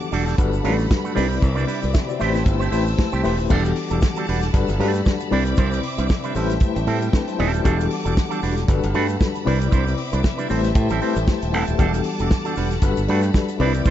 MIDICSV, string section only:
0, 0, Header, 1, 2, 480
1, 0, Start_track
1, 0, Tempo, 518135
1, 1323, Time_signature, 4, 2, 24, 8
1, 12880, End_track
2, 0, Start_track
2, 0, Title_t, "String section"
2, 0, Program_c, 0, 48
2, 0, Note_on_c, 0, 55, 74
2, 0, Note_on_c, 0, 78, 66
2, 0, Note_on_c, 0, 81, 68
2, 0, Note_on_c, 0, 86, 82
2, 336, Note_off_c, 0, 78, 0
2, 343, Note_on_c, 0, 83, 80
2, 347, Note_on_c, 0, 78, 64
2, 350, Note_off_c, 0, 86, 0
2, 1064, Note_off_c, 0, 81, 0
2, 1065, Note_off_c, 0, 55, 0
2, 1068, Note_off_c, 0, 78, 0
2, 1075, Note_on_c, 0, 60, 78
2, 1079, Note_on_c, 0, 86, 82
2, 1081, Note_on_c, 0, 76, 70
2, 2019, Note_off_c, 0, 83, 0
2, 2033, Note_off_c, 0, 86, 0
2, 2034, Note_off_c, 0, 76, 0
2, 2045, Note_on_c, 0, 79, 63
2, 2045, Note_on_c, 0, 81, 77
2, 2048, Note_on_c, 0, 88, 82
2, 3222, Note_off_c, 0, 60, 0
2, 3235, Note_off_c, 0, 79, 0
2, 3235, Note_off_c, 0, 81, 0
2, 3236, Note_off_c, 0, 88, 0
2, 3244, Note_on_c, 0, 55, 68
2, 3247, Note_on_c, 0, 86, 84
2, 3252, Note_on_c, 0, 78, 69
2, 3253, Note_on_c, 0, 81, 74
2, 4192, Note_off_c, 0, 55, 0
2, 4198, Note_off_c, 0, 86, 0
2, 4202, Note_on_c, 0, 83, 82
2, 4204, Note_on_c, 0, 55, 73
2, 4914, Note_off_c, 0, 78, 0
2, 4915, Note_off_c, 0, 81, 0
2, 4919, Note_off_c, 0, 55, 0
2, 4925, Note_on_c, 0, 60, 72
2, 4928, Note_on_c, 0, 86, 86
2, 4929, Note_on_c, 0, 76, 74
2, 5868, Note_off_c, 0, 83, 0
2, 5877, Note_off_c, 0, 60, 0
2, 5878, Note_off_c, 0, 86, 0
2, 5893, Note_on_c, 0, 81, 74
2, 5895, Note_on_c, 0, 79, 78
2, 5898, Note_on_c, 0, 55, 86
2, 7067, Note_off_c, 0, 76, 0
2, 7079, Note_off_c, 0, 79, 0
2, 7093, Note_on_c, 0, 78, 75
2, 7094, Note_on_c, 0, 86, 93
2, 8028, Note_off_c, 0, 81, 0
2, 8040, Note_off_c, 0, 78, 0
2, 8040, Note_off_c, 0, 86, 0
2, 8063, Note_on_c, 0, 83, 78
2, 8066, Note_on_c, 0, 81, 67
2, 8067, Note_on_c, 0, 78, 59
2, 8742, Note_off_c, 0, 55, 0
2, 8767, Note_on_c, 0, 86, 84
2, 8768, Note_off_c, 0, 81, 0
2, 8768, Note_on_c, 0, 60, 71
2, 8768, Note_on_c, 0, 76, 82
2, 8769, Note_off_c, 0, 78, 0
2, 9715, Note_off_c, 0, 83, 0
2, 9715, Note_off_c, 0, 86, 0
2, 9716, Note_off_c, 0, 60, 0
2, 9723, Note_on_c, 0, 81, 75
2, 9724, Note_on_c, 0, 79, 81
2, 9725, Note_on_c, 0, 55, 72
2, 10901, Note_off_c, 0, 76, 0
2, 10909, Note_off_c, 0, 79, 0
2, 10921, Note_on_c, 0, 78, 75
2, 10924, Note_on_c, 0, 86, 84
2, 11870, Note_off_c, 0, 86, 0
2, 11871, Note_on_c, 0, 83, 75
2, 12567, Note_off_c, 0, 81, 0
2, 12568, Note_off_c, 0, 55, 0
2, 12579, Note_off_c, 0, 78, 0
2, 12585, Note_off_c, 0, 83, 0
2, 12595, Note_on_c, 0, 86, 82
2, 12599, Note_on_c, 0, 60, 80
2, 12599, Note_on_c, 0, 76, 80
2, 12602, Note_on_c, 0, 83, 69
2, 12880, Note_off_c, 0, 60, 0
2, 12880, Note_off_c, 0, 76, 0
2, 12880, Note_off_c, 0, 83, 0
2, 12880, Note_off_c, 0, 86, 0
2, 12880, End_track
0, 0, End_of_file